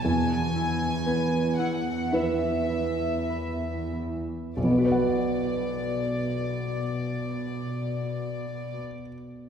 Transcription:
X:1
M:4/4
L:1/8
Q:1/4=48
K:Bm
V:1 name="Violin section"
^g3 f e3 z | d8 |]
V:2 name="Harp"
[E,B,B] E B E B, E B E | [B,,B,FBf]8 |]
V:3 name="Felt piano"
E,,2 B,2 [EB]4 | [B,,,B,,B,FBf]8 |]
V:4 name="Cello section" clef=bass
E,,8 | B,,8 |]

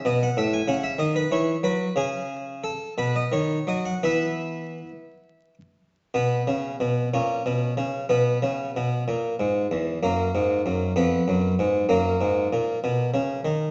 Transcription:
X:1
M:6/8
L:1/16
Q:3/8=62
K:E
V:1 name="Harpsichord"
d f e g f e d B c2 B2 | G4 A2 B d c2 d f | e8- e2 z2 | [K:F#mix] B,6 C6 |
B,12 | A,6 _C6 | A,12 |]
V:2 name="Harpsichord" clef=bass
B,,2 A,,2 C,2 D,2 E,2 F,2 | C,6 B,,2 D,2 F,2 | [E,B,E]6 z6 | [K:F#mix] B,,2 C,2 B,,2 A,,2 B,,2 C,2 |
B,,2 C,2 B,,2 A,,2 G,,2 E,,2 | F,,2 G,,2 F,,2 =F,,2 ^F,,2 _A,,2 | F,,2 G,,2 A,,2 B,,2 C,2 D,2 |]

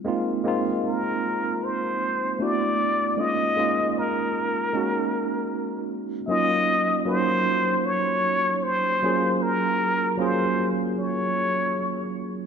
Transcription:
X:1
M:4/4
L:1/8
Q:"Swing 16ths" 1/4=77
K:Ebdor
V:1 name="Muted trumpet"
z2 B2 c2 =d2 | e2 B4- B z | e2 c2 d2 c2 | B2 c z d3 z |]
V:2 name="Tine electric piano"
[A,B,CEF] [A,B,CEF]4 z [=A,=B,=D=E^F]2 | [A,B,DEF] [A,B,DEF]3 [A,B,DEG]4 | [G,B,DEF]2 [G,B,DEG]4 z [G,B,DFA]- | [G,B,DFA]2 [G,B,DFA]4 z2 |]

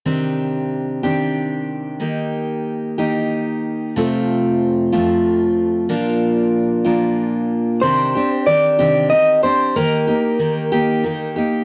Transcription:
X:1
M:6/8
L:1/8
Q:3/8=62
K:Cdor
V:1 name="Clean electric guitar"
z6 | z6 | z6 | z6 |
c2 d2 e c | B4- B z |]
V:2 name="Steel-string acoustic guitar"
[C,E,CDG]3 [C,E,CDG]3 | [E,B,EG]3 [E,B,EG]3 | [F,,C,F,A,CF]3 [F,,C,F,A,CF]3 | [B,,F,B,DF]3 [B,,F,B,DF]3 |
[C,E,CDG] [CDG] [E,CDG] [C,E,CDG] [E,CG] [CDG] | [E,B,EG] [B,EG] [E,B,EG] [E,B,EG] [E,B,EG] [B,EG] |]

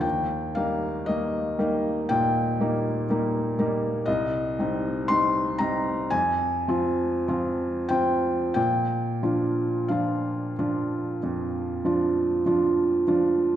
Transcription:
X:1
M:4/4
L:1/8
Q:1/4=57
K:Eblyd
V:1 name="Felt piano"
g f e2 g4 | [K:Bbmix] e2 c' b a3 g | g2 f4 z2 |]
V:2 name="Felt piano"
E,, [G,B,E] [G,B,E] [G,B,E] B,, [G,B,E] [G,B,E] [G,B,E] | [K:Bbmix] C,, [G,CE] [G,CE] [G,CE] F,, [F,CF] [F,CF] [F,CF] | B,, [F,DF] [F,DF] [F,DF] F,, [F,DF] [F,DF] [F,DF] |]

